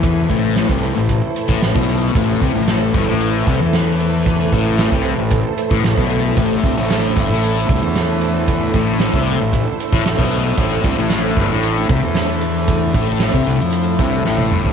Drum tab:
HH |x-x-x-x-x-x-x-x-|x-x-x-x-x-x-x-x-|x-x-x-x-x-x-x-x-|x-x-x-x-x-x-x-x-|
SD |----o-------o---|----o-------o---|----o-------o---|----o-------o---|
T1 |----------------|----------------|----------------|----------------|
T2 |----------------|----------------|----------------|----------------|
FT |----------------|----------------|----------------|----------------|
BD |o-o--o--o--o-o--|o-o---o---o-----|o-o--o--o--o-o--|o-o---o---o-----|

HH |x-x-x-x-x-x-x-x-|x-x-x-x-x-x-x-x-|x-x-x-x-x-x-----|
SD |----o-------o---|----o-------o---|----o-------o---|
T1 |----------------|----------------|-------------o--|
T2 |----------------|----------------|--------------o-|
FT |----------------|----------------|---------------o|
BD |o-o--o--o--o-o--|o-o---o---o-----|o-o--o----o-----|